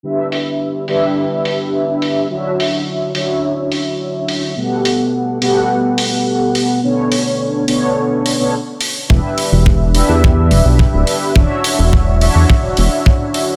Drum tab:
HH |-o-o-o-o|-o-o-o-o|-o-o-o-o|-o-o-o-o|
BD |--------|--------|--------|--------|

HH |-o-o-o-o|-o-o-o-o|
BD |o-o-o-o-|o-o-o-o-|